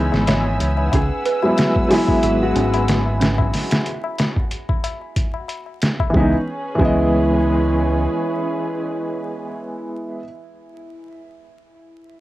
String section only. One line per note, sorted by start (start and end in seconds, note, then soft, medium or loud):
0.00 0.88 C#5 medium
0.00 3.49 G#5 medium
0.00 0.88 B5 medium
0.00 0.88 E6 medium
0.92 3.51 B4 medium
0.92 3.51 F#5 medium
0.92 3.51 E6 medium
6.14 9.51 C#4 medium
6.14 9.52 G#4 medium
6.14 9.51 B4 medium